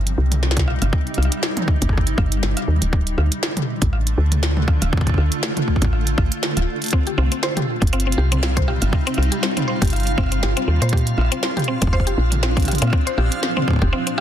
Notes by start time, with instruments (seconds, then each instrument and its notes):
Already playing: fm bass G1, ambient pad C3 G3 D#4
0.07 closed hi-hat
0.18 fm bass C2
0.32 closed hi-hat, mid tom
0.43 snare
0.51 snare
0.57 kick, snare, closed hi-hat, mid tom
0.68 cross-stick
0.82 fm bass G1, cross-stick, closed hi-hat
0.93 kick
1.07 closed hi-hat
1.14 fm bass C2, cross-stick, closed hi-hat
1.23 cross-stick, closed hi-hat
1.32 cross-stick, closed hi-hat
1.37 cross-stick
1.43 snare
1.57 closed hi-hat, mid tom
1.68 kick
1.82 fm bass G1, kick, closed hi-hat
1.89 kick, cross-stick
1.98 kick
2.07 closed hi-hat
2.18 fm bass G1, kick, cross-stick
2.32 closed hi-hat
2.43 fm bass G1, snare
2.57 cross-stick, closed hi-hat
2.68 fm bass D#2
2.82 fm bass D1, closed hi-hat
2.93 ambient pad D3, kick
3.05 ambient pad A3, closed hi-hat
3.11 ambient pad D4
3.18 fm bass D2, cross-stick
3.32 closed hi-hat
3.43 snare
3.57 ambient pad F4, closed hi-hat, mid tom
3.82 fm bass A1, kick, closed hi-hat
3.93 cross-stick
4.07 closed hi-hat
4.18 fm bass D2
4.32 closed hi-hat, mid tom
4.43 snare
4.57 mid tom
4.68 kick, cross-stick
4.82 fm bass D1, cross-stick, closed hi-hat
4.93 kick
4.97 kick
5.01 kick
5.07 kick, closed hi-hat
5.09 kick
5.14 fm bass D2, kick, cross-stick
5.32 closed hi-hat
5.43 snare
5.57 closed hi-hat, mid tom
5.68 kick
5.76 kick
5.82 fm bass A1, kick, closed hi-hat
5.84 kick
5.93 cross-stick
6.07 closed hi-hat
6.18 fm bass A1, kick, cross-stick
6.32 closed hi-hat
6.43 snare
6.57 fm bass D1, cross-stick, closed hi-hat
6.82 closed hi-hat
6.84 closed hi-hat
6.86 closed hi-hat
6.88 closed hi-hat
6.91 ambient pad C3, synth arpeggio sound C4, synth texture F4, kick, closed hi-hat
7.07 synth arpeggio sound G4, closed hi-hat
7.18 fm bass C2, synth arpeggio sound C4, cross-stick
7.32 synth arpeggio sound C4, closed hi-hat
7.42 ambient pad G3, synth arpeggio sound C5, snare
7.57 synth arpeggio sound G4, closed hi-hat, mid tom
7.64 ambient pad D#4
7.82 fm bass G1, kick, closed hi-hat
7.87 closed hi-hat
7.93 synth arpeggio sound C4, cross-stick, closed hi-hat
8.00 closed hi-hat
8.07 synth arpeggio sound C4
8.12 closed hi-hat
8.18 fm bass C2, synth arpeggio sound G4
8.32 synth arpeggio sound C4, closed hi-hat, mid tom
8.43 synth arpeggio sound C4, snare
8.57 synth arpeggio sound C5, kick, closed hi-hat, mid tom
8.68 synth arpeggio sound G4, cross-stick
8.82 fm bass G1, cross-stick, closed hi-hat
8.93 kick
9.07 synth arpeggio sound C4, closed hi-hat
9.14 fm bass C2, synth arpeggio sound C4, cross-stick, closed hi-hat
9.23 closed hi-hat
9.32 synth arpeggio sound G4, closed hi-hat
9.43 synth arpeggio sound C4, snare
9.57 synth arpeggio sound C4, closed hi-hat, mid tom
9.68 synth arpeggio sound C5
9.82 fm bass G1, synth arpeggio sound G4, kick, closed hi-hat
9.85 closed hi-hat
9.87 closed hi-hat
9.90 cross-stick, closed hi-hat
9.93 closed hi-hat
9.96 closed hi-hat
10.00 closed hi-hat
10.03 closed hi-hat
10.07 closed hi-hat
10.18 fm bass G1, synth arpeggio sound C4, kick, cross-stick
10.21 cross-stick
10.23 cross-stick
10.26 cross-stick
10.29 synth arpeggio sound C4, cross-stick, closed hi-hat
10.43 fm bass G1, synth arpeggio sound G4, snare
10.57 synth arpeggio sound C4, cross-stick, closed hi-hat
10.68 fm bass D#2, synth arpeggio sound C4
10.82 fm bass A#2, synth arpeggio sound C5, closed hi-hat
10.89 ambient pad A#2, synth arpeggio sound G4, kick, closed hi-hat
10.97 closed hi-hat
11.07 closed hi-hat
11.12 ambient pad D4
11.18 fm bass A#1, cross-stick
11.21 cross-stick
11.25 cross-stick
11.32 ambient pad F3, synth arpeggio sound C4, cross-stick, closed hi-hat
11.37 cross-stick
11.40 synth arpeggio sound C4, cross-stick, snare
11.57 ambient pad C4, synth arpeggio sound G4, closed hi-hat, mid tom
11.59 closed hi-hat
11.64 synth arpeggio sound C4, closed hi-hat
11.82 fm bass F1, synth arpeggio sound C4, kick, closed hi-hat
11.87 kick
11.93 synth arpeggio sound C5, kick, cross-stick
12.00 kick
12.07 synth arpeggio sound G4, closed hi-hat
12.18 fm bass A#1
12.32 closed hi-hat, mid tom
12.43 synth arpeggio sound C4, snare
12.57 synth arpeggio sound C4, kick, closed hi-hat, mid tom
12.60 closed hi-hat
12.62 closed hi-hat, mid tom
12.65 synth arpeggio sound G4, cross-stick, closed hi-hat
12.68 closed hi-hat
12.71 closed hi-hat, mid tom
12.75 closed hi-hat
12.78 fm bass A#2, synth arpeggio sound C4, cross-stick, closed hi-hat
12.82 cross-stick, closed hi-hat
12.87 cross-stick
12.90 synth arpeggio sound C4, kick, cross-stick
13.07 synth arpeggio sound C5, closed hi-hat
13.18 fm bass A#1, synth arpeggio sound G4, cross-stick
13.32 closed hi-hat
13.43 snare
13.57 synth arpeggio sound C4, mid tom
13.68 synth arpeggio sound C4, kick
13.71 kick
13.73 kick
13.76 kick
13.79 fm bass F1, synth arpeggio sound G4, kick
13.82 kick
13.93 synth arpeggio sound C4, cross-stick
14.07 synth arpeggio sound C4, closed hi-hat